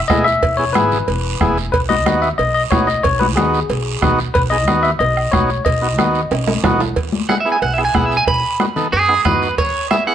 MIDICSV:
0, 0, Header, 1, 7, 480
1, 0, Start_track
1, 0, Key_signature, 4, "major"
1, 0, Tempo, 326975
1, 627, Time_signature, 4, 2, 24, 8
1, 14896, End_track
2, 0, Start_track
2, 0, Title_t, "Clean electric guitar"
2, 0, Program_c, 0, 27
2, 10700, Note_on_c, 0, 78, 91
2, 10857, Note_off_c, 0, 78, 0
2, 10869, Note_on_c, 0, 76, 70
2, 11022, Note_off_c, 0, 76, 0
2, 11037, Note_on_c, 0, 80, 72
2, 11186, Note_off_c, 0, 80, 0
2, 11193, Note_on_c, 0, 78, 86
2, 11356, Note_off_c, 0, 78, 0
2, 11356, Note_on_c, 0, 76, 75
2, 11506, Note_off_c, 0, 76, 0
2, 11520, Note_on_c, 0, 80, 84
2, 11670, Note_off_c, 0, 80, 0
2, 11670, Note_on_c, 0, 78, 84
2, 11828, Note_off_c, 0, 78, 0
2, 11828, Note_on_c, 0, 76, 77
2, 11982, Note_off_c, 0, 76, 0
2, 11993, Note_on_c, 0, 80, 92
2, 12144, Note_off_c, 0, 80, 0
2, 12153, Note_on_c, 0, 83, 94
2, 12615, Note_off_c, 0, 83, 0
2, 13099, Note_on_c, 0, 68, 98
2, 13568, Note_off_c, 0, 68, 0
2, 13580, Note_on_c, 0, 71, 85
2, 14049, Note_off_c, 0, 71, 0
2, 14068, Note_on_c, 0, 73, 87
2, 14533, Note_off_c, 0, 73, 0
2, 14543, Note_on_c, 0, 76, 81
2, 14778, Note_off_c, 0, 76, 0
2, 14786, Note_on_c, 0, 78, 90
2, 14896, Note_off_c, 0, 78, 0
2, 14896, End_track
3, 0, Start_track
3, 0, Title_t, "Tine electric piano"
3, 0, Program_c, 1, 4
3, 117, Note_on_c, 1, 75, 104
3, 354, Note_off_c, 1, 75, 0
3, 359, Note_on_c, 1, 76, 106
3, 819, Note_off_c, 1, 76, 0
3, 838, Note_on_c, 1, 73, 90
3, 1071, Note_on_c, 1, 71, 87
3, 1075, Note_off_c, 1, 73, 0
3, 2231, Note_off_c, 1, 71, 0
3, 2527, Note_on_c, 1, 71, 92
3, 2640, Note_off_c, 1, 71, 0
3, 2774, Note_on_c, 1, 75, 95
3, 3227, Note_off_c, 1, 75, 0
3, 3258, Note_on_c, 1, 76, 87
3, 3368, Note_off_c, 1, 76, 0
3, 3493, Note_on_c, 1, 75, 101
3, 3717, Note_off_c, 1, 75, 0
3, 3734, Note_on_c, 1, 75, 85
3, 3845, Note_off_c, 1, 75, 0
3, 3973, Note_on_c, 1, 73, 89
3, 4203, Note_off_c, 1, 73, 0
3, 4216, Note_on_c, 1, 75, 95
3, 4445, Note_off_c, 1, 75, 0
3, 4454, Note_on_c, 1, 73, 102
3, 4684, Note_off_c, 1, 73, 0
3, 4689, Note_on_c, 1, 71, 88
3, 4801, Note_off_c, 1, 71, 0
3, 4929, Note_on_c, 1, 68, 78
3, 6079, Note_off_c, 1, 68, 0
3, 6370, Note_on_c, 1, 71, 99
3, 6482, Note_off_c, 1, 71, 0
3, 6606, Note_on_c, 1, 75, 87
3, 7089, Note_on_c, 1, 76, 100
3, 7111, Note_off_c, 1, 75, 0
3, 7200, Note_off_c, 1, 76, 0
3, 7327, Note_on_c, 1, 75, 103
3, 7782, Note_off_c, 1, 75, 0
3, 7804, Note_on_c, 1, 73, 90
3, 8260, Note_off_c, 1, 73, 0
3, 8290, Note_on_c, 1, 75, 91
3, 9678, Note_off_c, 1, 75, 0
3, 14896, End_track
4, 0, Start_track
4, 0, Title_t, "Transistor combo organ"
4, 0, Program_c, 2, 18
4, 137, Note_on_c, 2, 59, 84
4, 141, Note_on_c, 2, 64, 76
4, 147, Note_on_c, 2, 68, 93
4, 394, Note_off_c, 2, 59, 0
4, 396, Note_off_c, 2, 64, 0
4, 399, Note_off_c, 2, 68, 0
4, 859, Note_on_c, 2, 59, 64
4, 866, Note_on_c, 2, 64, 61
4, 870, Note_on_c, 2, 68, 73
4, 947, Note_off_c, 2, 59, 0
4, 951, Note_off_c, 2, 64, 0
4, 953, Note_off_c, 2, 68, 0
4, 1098, Note_on_c, 2, 59, 77
4, 1106, Note_on_c, 2, 64, 73
4, 1110, Note_on_c, 2, 68, 85
4, 1439, Note_off_c, 2, 59, 0
4, 1443, Note_off_c, 2, 64, 0
4, 1445, Note_off_c, 2, 68, 0
4, 2060, Note_on_c, 2, 59, 96
4, 2066, Note_on_c, 2, 64, 88
4, 2070, Note_on_c, 2, 68, 103
4, 2316, Note_off_c, 2, 59, 0
4, 2319, Note_off_c, 2, 64, 0
4, 2321, Note_off_c, 2, 68, 0
4, 2775, Note_on_c, 2, 59, 62
4, 2783, Note_on_c, 2, 63, 60
4, 2786, Note_on_c, 2, 66, 76
4, 2866, Note_off_c, 2, 59, 0
4, 2869, Note_off_c, 2, 63, 0
4, 2871, Note_off_c, 2, 66, 0
4, 3017, Note_on_c, 2, 59, 79
4, 3024, Note_on_c, 2, 63, 72
4, 3030, Note_on_c, 2, 66, 83
4, 3358, Note_off_c, 2, 59, 0
4, 3362, Note_off_c, 2, 63, 0
4, 3365, Note_off_c, 2, 66, 0
4, 3985, Note_on_c, 2, 59, 80
4, 3990, Note_on_c, 2, 63, 72
4, 3996, Note_on_c, 2, 66, 88
4, 4238, Note_off_c, 2, 59, 0
4, 4241, Note_off_c, 2, 63, 0
4, 4244, Note_off_c, 2, 66, 0
4, 4700, Note_on_c, 2, 59, 66
4, 4707, Note_on_c, 2, 63, 62
4, 4713, Note_on_c, 2, 66, 72
4, 4788, Note_off_c, 2, 59, 0
4, 4791, Note_off_c, 2, 63, 0
4, 4794, Note_off_c, 2, 66, 0
4, 4942, Note_on_c, 2, 59, 79
4, 4949, Note_on_c, 2, 63, 71
4, 4951, Note_on_c, 2, 66, 88
4, 5281, Note_off_c, 2, 59, 0
4, 5284, Note_off_c, 2, 63, 0
4, 5285, Note_off_c, 2, 66, 0
4, 5896, Note_on_c, 2, 59, 89
4, 5904, Note_on_c, 2, 63, 82
4, 5907, Note_on_c, 2, 66, 105
4, 6154, Note_off_c, 2, 59, 0
4, 6157, Note_off_c, 2, 63, 0
4, 6159, Note_off_c, 2, 66, 0
4, 6619, Note_on_c, 2, 59, 72
4, 6626, Note_on_c, 2, 63, 60
4, 6632, Note_on_c, 2, 68, 76
4, 6707, Note_off_c, 2, 59, 0
4, 6710, Note_off_c, 2, 63, 0
4, 6713, Note_off_c, 2, 68, 0
4, 6861, Note_on_c, 2, 59, 77
4, 6865, Note_on_c, 2, 63, 72
4, 6872, Note_on_c, 2, 66, 90
4, 7199, Note_off_c, 2, 59, 0
4, 7201, Note_off_c, 2, 63, 0
4, 7205, Note_off_c, 2, 66, 0
4, 7818, Note_on_c, 2, 59, 84
4, 7822, Note_on_c, 2, 63, 79
4, 7828, Note_on_c, 2, 66, 86
4, 8074, Note_off_c, 2, 59, 0
4, 8076, Note_off_c, 2, 63, 0
4, 8079, Note_off_c, 2, 66, 0
4, 8538, Note_on_c, 2, 59, 65
4, 8546, Note_on_c, 2, 63, 62
4, 8552, Note_on_c, 2, 66, 75
4, 8625, Note_off_c, 2, 59, 0
4, 8630, Note_off_c, 2, 63, 0
4, 8632, Note_off_c, 2, 66, 0
4, 8778, Note_on_c, 2, 59, 85
4, 8779, Note_on_c, 2, 63, 72
4, 8788, Note_on_c, 2, 66, 84
4, 9117, Note_off_c, 2, 59, 0
4, 9118, Note_off_c, 2, 63, 0
4, 9122, Note_off_c, 2, 66, 0
4, 9738, Note_on_c, 2, 59, 92
4, 9744, Note_on_c, 2, 63, 85
4, 9751, Note_on_c, 2, 66, 106
4, 9993, Note_off_c, 2, 59, 0
4, 9996, Note_off_c, 2, 63, 0
4, 10000, Note_off_c, 2, 66, 0
4, 10701, Note_on_c, 2, 59, 75
4, 10712, Note_on_c, 2, 64, 69
4, 10714, Note_on_c, 2, 68, 83
4, 10787, Note_off_c, 2, 59, 0
4, 10792, Note_off_c, 2, 64, 0
4, 10793, Note_off_c, 2, 68, 0
4, 10939, Note_on_c, 2, 59, 64
4, 10945, Note_on_c, 2, 64, 61
4, 10952, Note_on_c, 2, 68, 69
4, 11110, Note_off_c, 2, 59, 0
4, 11113, Note_off_c, 2, 64, 0
4, 11116, Note_off_c, 2, 68, 0
4, 11421, Note_on_c, 2, 59, 68
4, 11425, Note_on_c, 2, 64, 57
4, 11434, Note_on_c, 2, 68, 72
4, 11507, Note_off_c, 2, 59, 0
4, 11509, Note_off_c, 2, 64, 0
4, 11513, Note_off_c, 2, 68, 0
4, 11660, Note_on_c, 2, 59, 78
4, 11666, Note_on_c, 2, 64, 71
4, 11669, Note_on_c, 2, 68, 81
4, 11998, Note_off_c, 2, 59, 0
4, 12001, Note_off_c, 2, 64, 0
4, 12003, Note_off_c, 2, 68, 0
4, 12619, Note_on_c, 2, 59, 72
4, 12623, Note_on_c, 2, 63, 68
4, 12631, Note_on_c, 2, 66, 84
4, 12706, Note_off_c, 2, 59, 0
4, 12708, Note_off_c, 2, 63, 0
4, 12712, Note_off_c, 2, 66, 0
4, 12859, Note_on_c, 2, 59, 79
4, 12861, Note_on_c, 2, 63, 74
4, 12866, Note_on_c, 2, 69, 88
4, 13030, Note_off_c, 2, 59, 0
4, 13031, Note_off_c, 2, 63, 0
4, 13034, Note_off_c, 2, 69, 0
4, 13331, Note_on_c, 2, 59, 68
4, 13340, Note_on_c, 2, 63, 59
4, 13343, Note_on_c, 2, 68, 73
4, 13422, Note_off_c, 2, 59, 0
4, 13427, Note_off_c, 2, 63, 0
4, 13428, Note_off_c, 2, 68, 0
4, 13581, Note_on_c, 2, 59, 74
4, 13589, Note_on_c, 2, 63, 70
4, 13593, Note_on_c, 2, 66, 89
4, 13920, Note_off_c, 2, 59, 0
4, 13924, Note_off_c, 2, 63, 0
4, 13926, Note_off_c, 2, 66, 0
4, 14541, Note_on_c, 2, 59, 78
4, 14547, Note_on_c, 2, 64, 73
4, 14551, Note_on_c, 2, 68, 83
4, 14628, Note_off_c, 2, 59, 0
4, 14631, Note_off_c, 2, 64, 0
4, 14633, Note_off_c, 2, 68, 0
4, 14779, Note_on_c, 2, 59, 70
4, 14786, Note_on_c, 2, 64, 62
4, 14792, Note_on_c, 2, 68, 74
4, 14896, Note_off_c, 2, 59, 0
4, 14896, Note_off_c, 2, 64, 0
4, 14896, Note_off_c, 2, 68, 0
4, 14896, End_track
5, 0, Start_track
5, 0, Title_t, "Upright bass"
5, 0, Program_c, 3, 32
5, 144, Note_on_c, 3, 28, 88
5, 529, Note_off_c, 3, 28, 0
5, 628, Note_on_c, 3, 28, 92
5, 1110, Note_off_c, 3, 28, 0
5, 1110, Note_on_c, 3, 32, 89
5, 1493, Note_off_c, 3, 32, 0
5, 1584, Note_on_c, 3, 28, 95
5, 1970, Note_off_c, 3, 28, 0
5, 2069, Note_on_c, 3, 28, 84
5, 2453, Note_off_c, 3, 28, 0
5, 2550, Note_on_c, 3, 35, 89
5, 3028, Note_off_c, 3, 35, 0
5, 3028, Note_on_c, 3, 39, 90
5, 3412, Note_off_c, 3, 39, 0
5, 3509, Note_on_c, 3, 35, 97
5, 3892, Note_off_c, 3, 35, 0
5, 3988, Note_on_c, 3, 35, 86
5, 4372, Note_off_c, 3, 35, 0
5, 4466, Note_on_c, 3, 35, 103
5, 4948, Note_off_c, 3, 35, 0
5, 4948, Note_on_c, 3, 39, 84
5, 5332, Note_off_c, 3, 39, 0
5, 5425, Note_on_c, 3, 35, 102
5, 5810, Note_off_c, 3, 35, 0
5, 5905, Note_on_c, 3, 35, 96
5, 6290, Note_off_c, 3, 35, 0
5, 6385, Note_on_c, 3, 35, 100
5, 6865, Note_off_c, 3, 35, 0
5, 6865, Note_on_c, 3, 39, 87
5, 7249, Note_off_c, 3, 39, 0
5, 7342, Note_on_c, 3, 35, 104
5, 7727, Note_off_c, 3, 35, 0
5, 7826, Note_on_c, 3, 35, 96
5, 8210, Note_off_c, 3, 35, 0
5, 8307, Note_on_c, 3, 35, 100
5, 8787, Note_off_c, 3, 35, 0
5, 8787, Note_on_c, 3, 39, 91
5, 9170, Note_off_c, 3, 39, 0
5, 9267, Note_on_c, 3, 35, 96
5, 9650, Note_off_c, 3, 35, 0
5, 9746, Note_on_c, 3, 35, 86
5, 10130, Note_off_c, 3, 35, 0
5, 10223, Note_on_c, 3, 40, 85
5, 10415, Note_off_c, 3, 40, 0
5, 11186, Note_on_c, 3, 35, 94
5, 11569, Note_off_c, 3, 35, 0
5, 11669, Note_on_c, 3, 35, 99
5, 12051, Note_off_c, 3, 35, 0
5, 12144, Note_on_c, 3, 35, 88
5, 12337, Note_off_c, 3, 35, 0
5, 13111, Note_on_c, 3, 42, 102
5, 13493, Note_off_c, 3, 42, 0
5, 13582, Note_on_c, 3, 42, 93
5, 13968, Note_off_c, 3, 42, 0
5, 14065, Note_on_c, 3, 40, 90
5, 14258, Note_off_c, 3, 40, 0
5, 14896, End_track
6, 0, Start_track
6, 0, Title_t, "Two-headed folk drums"
6, 144, Note_on_c, 9, 37, 88
6, 145, Note_on_c, 9, 36, 90
6, 291, Note_off_c, 9, 37, 0
6, 292, Note_off_c, 9, 36, 0
6, 626, Note_on_c, 9, 36, 83
6, 773, Note_off_c, 9, 36, 0
6, 1105, Note_on_c, 9, 37, 86
6, 1251, Note_off_c, 9, 37, 0
6, 2067, Note_on_c, 9, 36, 86
6, 2068, Note_on_c, 9, 37, 88
6, 2213, Note_off_c, 9, 36, 0
6, 2215, Note_off_c, 9, 37, 0
6, 2548, Note_on_c, 9, 36, 90
6, 2695, Note_off_c, 9, 36, 0
6, 3028, Note_on_c, 9, 37, 92
6, 3175, Note_off_c, 9, 37, 0
6, 3987, Note_on_c, 9, 36, 89
6, 3987, Note_on_c, 9, 37, 85
6, 4134, Note_off_c, 9, 36, 0
6, 4134, Note_off_c, 9, 37, 0
6, 4467, Note_on_c, 9, 36, 79
6, 4614, Note_off_c, 9, 36, 0
6, 4947, Note_on_c, 9, 37, 94
6, 5094, Note_off_c, 9, 37, 0
6, 5907, Note_on_c, 9, 37, 83
6, 5908, Note_on_c, 9, 36, 87
6, 6053, Note_off_c, 9, 37, 0
6, 6054, Note_off_c, 9, 36, 0
6, 6387, Note_on_c, 9, 36, 86
6, 6534, Note_off_c, 9, 36, 0
6, 6866, Note_on_c, 9, 37, 94
6, 7013, Note_off_c, 9, 37, 0
6, 7592, Note_on_c, 9, 37, 73
6, 7739, Note_off_c, 9, 37, 0
6, 7827, Note_on_c, 9, 36, 87
6, 7829, Note_on_c, 9, 37, 83
6, 7973, Note_off_c, 9, 36, 0
6, 7975, Note_off_c, 9, 37, 0
6, 8307, Note_on_c, 9, 36, 86
6, 8454, Note_off_c, 9, 36, 0
6, 8788, Note_on_c, 9, 37, 87
6, 8935, Note_off_c, 9, 37, 0
6, 9745, Note_on_c, 9, 36, 84
6, 9747, Note_on_c, 9, 37, 82
6, 9892, Note_off_c, 9, 36, 0
6, 9894, Note_off_c, 9, 37, 0
6, 10226, Note_on_c, 9, 36, 80
6, 10372, Note_off_c, 9, 36, 0
6, 10706, Note_on_c, 9, 37, 92
6, 10853, Note_off_c, 9, 37, 0
6, 11425, Note_on_c, 9, 37, 77
6, 11572, Note_off_c, 9, 37, 0
6, 11665, Note_on_c, 9, 36, 85
6, 11665, Note_on_c, 9, 37, 75
6, 11811, Note_off_c, 9, 37, 0
6, 11812, Note_off_c, 9, 36, 0
6, 12144, Note_on_c, 9, 36, 85
6, 12291, Note_off_c, 9, 36, 0
6, 12623, Note_on_c, 9, 37, 90
6, 12770, Note_off_c, 9, 37, 0
6, 13344, Note_on_c, 9, 37, 71
6, 13491, Note_off_c, 9, 37, 0
6, 13583, Note_on_c, 9, 36, 81
6, 13583, Note_on_c, 9, 37, 87
6, 13730, Note_off_c, 9, 36, 0
6, 13730, Note_off_c, 9, 37, 0
6, 14065, Note_on_c, 9, 36, 82
6, 14212, Note_off_c, 9, 36, 0
6, 14545, Note_on_c, 9, 37, 93
6, 14691, Note_off_c, 9, 37, 0
6, 14896, End_track
7, 0, Start_track
7, 0, Title_t, "Drums"
7, 149, Note_on_c, 9, 66, 71
7, 150, Note_on_c, 9, 73, 76
7, 153, Note_on_c, 9, 63, 86
7, 295, Note_off_c, 9, 66, 0
7, 297, Note_off_c, 9, 73, 0
7, 300, Note_off_c, 9, 63, 0
7, 389, Note_on_c, 9, 73, 72
7, 536, Note_off_c, 9, 73, 0
7, 627, Note_on_c, 9, 56, 108
7, 631, Note_on_c, 9, 74, 78
7, 635, Note_on_c, 9, 63, 37
7, 773, Note_off_c, 9, 56, 0
7, 778, Note_off_c, 9, 74, 0
7, 782, Note_off_c, 9, 63, 0
7, 1109, Note_on_c, 9, 63, 87
7, 1110, Note_on_c, 9, 73, 78
7, 1256, Note_off_c, 9, 63, 0
7, 1257, Note_off_c, 9, 73, 0
7, 1347, Note_on_c, 9, 73, 67
7, 1354, Note_on_c, 9, 64, 67
7, 1494, Note_off_c, 9, 73, 0
7, 1501, Note_off_c, 9, 64, 0
7, 1583, Note_on_c, 9, 56, 86
7, 1588, Note_on_c, 9, 74, 75
7, 1595, Note_on_c, 9, 63, 34
7, 1730, Note_off_c, 9, 56, 0
7, 1734, Note_off_c, 9, 74, 0
7, 1742, Note_off_c, 9, 63, 0
7, 2070, Note_on_c, 9, 63, 95
7, 2070, Note_on_c, 9, 64, 95
7, 2217, Note_off_c, 9, 63, 0
7, 2217, Note_off_c, 9, 64, 0
7, 2313, Note_on_c, 9, 73, 76
7, 2460, Note_off_c, 9, 73, 0
7, 2549, Note_on_c, 9, 63, 36
7, 2550, Note_on_c, 9, 56, 111
7, 2551, Note_on_c, 9, 74, 75
7, 2696, Note_off_c, 9, 63, 0
7, 2697, Note_off_c, 9, 56, 0
7, 2697, Note_off_c, 9, 74, 0
7, 2787, Note_on_c, 9, 63, 84
7, 2934, Note_off_c, 9, 63, 0
7, 3030, Note_on_c, 9, 63, 94
7, 3031, Note_on_c, 9, 73, 74
7, 3176, Note_off_c, 9, 63, 0
7, 3178, Note_off_c, 9, 73, 0
7, 3274, Note_on_c, 9, 73, 67
7, 3421, Note_off_c, 9, 73, 0
7, 3510, Note_on_c, 9, 74, 73
7, 3511, Note_on_c, 9, 56, 91
7, 3514, Note_on_c, 9, 63, 37
7, 3657, Note_off_c, 9, 74, 0
7, 3658, Note_off_c, 9, 56, 0
7, 3661, Note_off_c, 9, 63, 0
7, 3987, Note_on_c, 9, 66, 70
7, 3989, Note_on_c, 9, 73, 72
7, 3993, Note_on_c, 9, 63, 91
7, 4133, Note_off_c, 9, 66, 0
7, 4135, Note_off_c, 9, 73, 0
7, 4140, Note_off_c, 9, 63, 0
7, 4236, Note_on_c, 9, 73, 73
7, 4383, Note_off_c, 9, 73, 0
7, 4466, Note_on_c, 9, 56, 103
7, 4471, Note_on_c, 9, 63, 33
7, 4478, Note_on_c, 9, 74, 80
7, 4612, Note_off_c, 9, 56, 0
7, 4617, Note_off_c, 9, 63, 0
7, 4625, Note_off_c, 9, 74, 0
7, 4712, Note_on_c, 9, 63, 80
7, 4859, Note_off_c, 9, 63, 0
7, 4954, Note_on_c, 9, 73, 83
7, 4955, Note_on_c, 9, 63, 94
7, 5101, Note_off_c, 9, 73, 0
7, 5102, Note_off_c, 9, 63, 0
7, 5196, Note_on_c, 9, 73, 68
7, 5342, Note_off_c, 9, 73, 0
7, 5426, Note_on_c, 9, 74, 74
7, 5430, Note_on_c, 9, 56, 89
7, 5436, Note_on_c, 9, 63, 37
7, 5572, Note_off_c, 9, 74, 0
7, 5577, Note_off_c, 9, 56, 0
7, 5583, Note_off_c, 9, 63, 0
7, 5909, Note_on_c, 9, 73, 70
7, 5912, Note_on_c, 9, 63, 90
7, 5912, Note_on_c, 9, 64, 92
7, 6056, Note_off_c, 9, 73, 0
7, 6059, Note_off_c, 9, 63, 0
7, 6059, Note_off_c, 9, 64, 0
7, 6147, Note_on_c, 9, 73, 70
7, 6293, Note_off_c, 9, 73, 0
7, 6385, Note_on_c, 9, 56, 111
7, 6388, Note_on_c, 9, 74, 78
7, 6390, Note_on_c, 9, 63, 33
7, 6532, Note_off_c, 9, 56, 0
7, 6535, Note_off_c, 9, 74, 0
7, 6537, Note_off_c, 9, 63, 0
7, 6863, Note_on_c, 9, 73, 73
7, 6867, Note_on_c, 9, 63, 88
7, 7010, Note_off_c, 9, 73, 0
7, 7014, Note_off_c, 9, 63, 0
7, 7105, Note_on_c, 9, 73, 68
7, 7252, Note_off_c, 9, 73, 0
7, 7345, Note_on_c, 9, 63, 35
7, 7348, Note_on_c, 9, 74, 67
7, 7353, Note_on_c, 9, 56, 86
7, 7491, Note_off_c, 9, 63, 0
7, 7495, Note_off_c, 9, 74, 0
7, 7500, Note_off_c, 9, 56, 0
7, 7826, Note_on_c, 9, 63, 91
7, 7827, Note_on_c, 9, 73, 73
7, 7973, Note_off_c, 9, 63, 0
7, 7973, Note_off_c, 9, 73, 0
7, 8064, Note_on_c, 9, 73, 69
7, 8211, Note_off_c, 9, 73, 0
7, 8307, Note_on_c, 9, 56, 101
7, 8307, Note_on_c, 9, 74, 79
7, 8312, Note_on_c, 9, 63, 35
7, 8454, Note_off_c, 9, 56, 0
7, 8454, Note_off_c, 9, 74, 0
7, 8459, Note_off_c, 9, 63, 0
7, 8784, Note_on_c, 9, 73, 75
7, 8788, Note_on_c, 9, 63, 85
7, 8931, Note_off_c, 9, 73, 0
7, 8935, Note_off_c, 9, 63, 0
7, 9020, Note_on_c, 9, 73, 66
7, 9167, Note_off_c, 9, 73, 0
7, 9264, Note_on_c, 9, 74, 78
7, 9270, Note_on_c, 9, 63, 35
7, 9271, Note_on_c, 9, 56, 82
7, 9271, Note_on_c, 9, 65, 82
7, 9411, Note_off_c, 9, 74, 0
7, 9417, Note_off_c, 9, 63, 0
7, 9418, Note_off_c, 9, 56, 0
7, 9418, Note_off_c, 9, 65, 0
7, 9505, Note_on_c, 9, 65, 94
7, 9509, Note_on_c, 9, 63, 74
7, 9652, Note_off_c, 9, 65, 0
7, 9656, Note_off_c, 9, 63, 0
7, 9743, Note_on_c, 9, 63, 94
7, 9743, Note_on_c, 9, 64, 95
7, 9744, Note_on_c, 9, 66, 105
7, 9746, Note_on_c, 9, 73, 72
7, 9890, Note_off_c, 9, 63, 0
7, 9890, Note_off_c, 9, 64, 0
7, 9891, Note_off_c, 9, 66, 0
7, 9893, Note_off_c, 9, 73, 0
7, 9989, Note_on_c, 9, 66, 83
7, 9990, Note_on_c, 9, 73, 72
7, 10136, Note_off_c, 9, 66, 0
7, 10137, Note_off_c, 9, 73, 0
7, 10222, Note_on_c, 9, 56, 104
7, 10222, Note_on_c, 9, 63, 33
7, 10229, Note_on_c, 9, 74, 72
7, 10368, Note_off_c, 9, 56, 0
7, 10369, Note_off_c, 9, 63, 0
7, 10376, Note_off_c, 9, 74, 0
7, 10459, Note_on_c, 9, 63, 81
7, 10606, Note_off_c, 9, 63, 0
7, 10705, Note_on_c, 9, 63, 87
7, 10707, Note_on_c, 9, 73, 72
7, 10851, Note_off_c, 9, 63, 0
7, 10854, Note_off_c, 9, 73, 0
7, 10955, Note_on_c, 9, 73, 62
7, 11102, Note_off_c, 9, 73, 0
7, 11186, Note_on_c, 9, 56, 86
7, 11190, Note_on_c, 9, 63, 33
7, 11194, Note_on_c, 9, 74, 72
7, 11333, Note_off_c, 9, 56, 0
7, 11336, Note_off_c, 9, 63, 0
7, 11341, Note_off_c, 9, 74, 0
7, 11668, Note_on_c, 9, 63, 90
7, 11675, Note_on_c, 9, 73, 64
7, 11815, Note_off_c, 9, 63, 0
7, 11822, Note_off_c, 9, 73, 0
7, 11915, Note_on_c, 9, 73, 66
7, 12061, Note_off_c, 9, 73, 0
7, 12147, Note_on_c, 9, 63, 35
7, 12148, Note_on_c, 9, 56, 105
7, 12152, Note_on_c, 9, 74, 75
7, 12294, Note_off_c, 9, 63, 0
7, 12295, Note_off_c, 9, 56, 0
7, 12299, Note_off_c, 9, 74, 0
7, 12622, Note_on_c, 9, 63, 89
7, 12633, Note_on_c, 9, 73, 72
7, 12769, Note_off_c, 9, 63, 0
7, 12780, Note_off_c, 9, 73, 0
7, 12862, Note_on_c, 9, 64, 66
7, 12873, Note_on_c, 9, 73, 63
7, 13008, Note_off_c, 9, 64, 0
7, 13020, Note_off_c, 9, 73, 0
7, 13106, Note_on_c, 9, 63, 33
7, 13107, Note_on_c, 9, 56, 79
7, 13116, Note_on_c, 9, 74, 71
7, 13253, Note_off_c, 9, 63, 0
7, 13254, Note_off_c, 9, 56, 0
7, 13263, Note_off_c, 9, 74, 0
7, 13588, Note_on_c, 9, 66, 65
7, 13590, Note_on_c, 9, 63, 91
7, 13590, Note_on_c, 9, 64, 87
7, 13590, Note_on_c, 9, 73, 62
7, 13735, Note_off_c, 9, 66, 0
7, 13737, Note_off_c, 9, 63, 0
7, 13737, Note_off_c, 9, 64, 0
7, 13737, Note_off_c, 9, 73, 0
7, 13831, Note_on_c, 9, 73, 68
7, 13978, Note_off_c, 9, 73, 0
7, 14068, Note_on_c, 9, 74, 76
7, 14069, Note_on_c, 9, 56, 104
7, 14078, Note_on_c, 9, 63, 32
7, 14214, Note_off_c, 9, 74, 0
7, 14216, Note_off_c, 9, 56, 0
7, 14224, Note_off_c, 9, 63, 0
7, 14549, Note_on_c, 9, 63, 86
7, 14554, Note_on_c, 9, 73, 75
7, 14696, Note_off_c, 9, 63, 0
7, 14701, Note_off_c, 9, 73, 0
7, 14791, Note_on_c, 9, 73, 65
7, 14896, Note_off_c, 9, 73, 0
7, 14896, End_track
0, 0, End_of_file